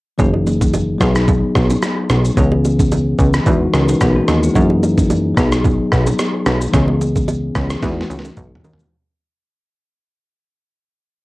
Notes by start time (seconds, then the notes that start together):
0.18 F#1 E3 A#3 D#4 G#4, kick, low conga, shaker
0.34 high bongo
0.47 high bongo, low bongo, shaker
0.61 kick, low bongo, shaker
0.74 high bongo, low conga, shaker
0.98 B1 F#3 B3 D#4, kick, cross-stick, shaker
1.03 G#4
1.15 cross-stick, shaker
1.28 kick, low conga, shaker
1.55 B1, kick, cross-stick, shaker
1.70 low bongo, shaker
1.82 cross-stick, high bongo, shaker
2.10 B1, cross-stick, low bongo, shaker
2.25 shaker
2.35 C#2 E3 B3 C#4, kick, low conga, shaker
2.40 G#4
2.52 high bongo
2.65 high bongo, low bongo, shaker
2.79 kick, low bongo, shaker
2.92 high bongo, low conga, shaker
3.19 C#2, kick, shaker
3.34 cross-stick, shaker
3.44 E2 E3 G#3 D#4, kick, low conga, shaker
3.49 F#4
3.74 C#2 C#4 A#4, cross-stick, shaker
3.88 D#4 B4, low bongo, shaker
4.01 B1 B3 G#4, kick, cross-stick, high bongo, shaker
4.16 A#3 F#4
4.28 D#2, cross-stick, low bongo, shaker
4.43 G#3 E4, shaker
4.54 F#2 E3 A#3 D#4 G#4, kick, low conga, shaker
4.70 high bongo
4.83 high bongo, low bongo, shaker
4.98 kick, low bongo, shaker
5.10 high bongo, low conga, shaker
5.35 B1 F#3 B3 D#4, kick, cross-stick, shaker
5.40 G#4
5.52 cross-stick, shaker
5.64 kick, low conga, shaker
5.92 B1, kick, cross-stick, shaker
6.07 low bongo, shaker
6.19 cross-stick, high bongo, shaker
6.46 B1, cross-stick, low bongo, shaker
6.61 shaker
6.71 C#2 E3 B3 C#4, kick, cross-stick, low conga, shaker
6.76 G#4
6.88 high bongo
7.01 high bongo, low bongo, shaker
7.16 kick, low bongo, shaker
7.28 high bongo, low conga, shaker
7.55 C#2, kick, cross-stick, shaker
7.70 cross-stick, shaker
7.80 E2 E3 G#3 D#4, kick, snare, low conga, shaker
7.85 F#4
8.01 snare
8.10 C#2, shaker
8.19 snare
8.25 low bongo, shaker
8.37 B1, kick, mid tom, high bongo, shaker
8.55 floor tom
8.64 D#2, low bongo, shaker
8.73 floor tom
8.79 shaker